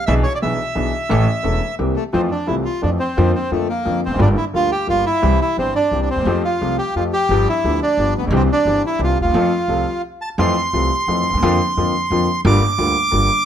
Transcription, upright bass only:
0.08 B1
0.43 B1
0.76 B1
1.11 A1
1.44 E1
1.79 C2
2.14 F2
2.49 C2
2.83 F2
3.18 F2
3.51 F2
3.86 F2
4.07 E1
4.11 F1
4.16 F#1 G1
4.54 D2
4.88 G1
5.23 C2
5.57 G1
5.92 C2
6.13 D2 D#2
6.21 E2
6.25 F2
6.62 C2
6.95 F2
7.29 G1
7.64 D2
7.97 G1
8.18 A1
8.23 A#1
8.27 B1 C2
8.65 G1
8.99 C2
9.20 D2
9.24 D#2
9.29 E2
9.34 F2
9.68 C2
10.38 F2
10.73 C2
11.08 F2
11.30 D2
11.34 D#2 E2
11.43 F2
11.77 F2
12.10 F2
12.45 G1
12.79 D2
13.13 G1

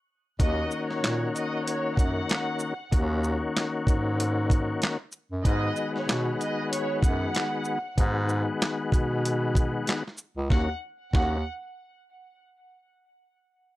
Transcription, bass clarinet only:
0.40 D#2
1.02 A#2
1.97 F#2
2.92 D#2
3.87 G#2
5.31 F#2
5.45 G#2
6.08 B2
7.03 F#2
7.98 G#2
8.92 B2
10.37 C#2
10.50 D#2
11.14 D#2

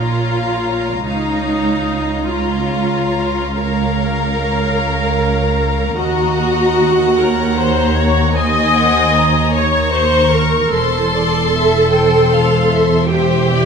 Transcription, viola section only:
Already playing: F4
1.06 D#4
2.27 F4
3.56 A#4
5.98 F#4
7.18 A#4
7.57 C5
7.95 C#5
8.35 D#5
9.55 C#5
9.94 C5
10.33 A#4
10.73 A4
13.09 G4

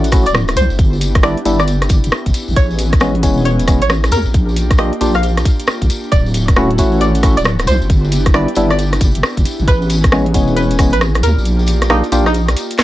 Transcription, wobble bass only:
Already playing: A1
0.26 D1
0.56 C2
0.71 G1
1.45 G1
1.90 G1
2.04 G1
2.26 G1
2.48 A1
2.56 A1
3.23 E1
3.82 A1
4.12 D#2
4.26 A#1
5.01 A#1
5.82 A#1
6.12 D1
6.79 A1
7.37 D1
7.68 C2
7.82 G1
8.57 G1
9.01 G1
9.15 G1
9.37 G1
9.60 A1
9.68 A1
10.34 E1
10.93 A1
11.23 D#2
11.37 A#1
12.12 A#1

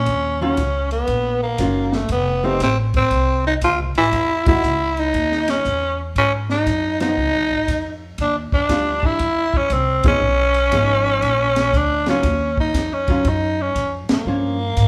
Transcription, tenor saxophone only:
Already playing: C#4
0.42 C#4
0.92 B3
1.43 A#3
1.95 A3
2.12 B3
2.45 C4
2.63 C4
2.97 C4
3.47 D#4
3.64 F4
3.98 E4
4.48 E4
5.00 D#4
5.50 C#4
6.18 C#4
6.51 D#4
7.02 D#4
8.21 D4
8.54 D4
9.05 E4
9.57 C#4
9.73 C4
10.08 C#4
11.77 D4
12.09 C#4
12.60 D#4
12.93 C#4
13.28 D#4
13.61 C#4
14.13 A#3

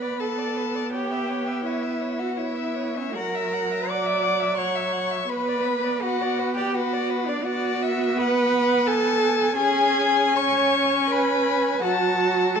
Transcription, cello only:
Already playing: B4
0.20 A4
0.93 G4
1.65 E4
2.19 F#4
2.37 E4
2.96 C#4
3.15 A#4
3.89 D5
4.58 C#5
5.29 B4
6.02 F#4
6.56 G4
6.74 F#4
7.26 D4
7.44 F#4
8.18 B4
8.87 A4
9.57 G#4
10.37 C#5
11.10 B4
11.82 F#4
12.56 A4

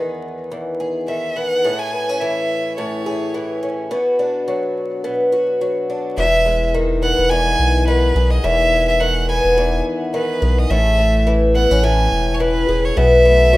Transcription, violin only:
1.08 E5
1.36 F#5
1.79 G#5
2.21 E5
2.77 C#5
6.17 E5
7.02 F#5
7.30 G#5
7.87 B4
8.31 D#5
8.44 E5
8.88 E5
9.00 F#5
9.29 G#5
10.14 B4
10.59 D#5
10.70 E5
11.55 F#5
11.84 G#5
12.34 C#5
12.41 B4
12.85 C#5
12.97 E5

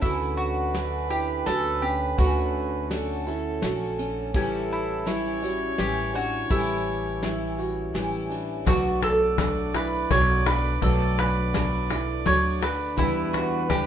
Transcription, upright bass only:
0.03 D2
1.47 D2
2.19 D2
3.63 A#1
4.35 A1
5.79 A1
6.50 A1
7.95 A1
8.67 B1
10.10 B1
10.82 B1
12.27 D2
12.98 E2

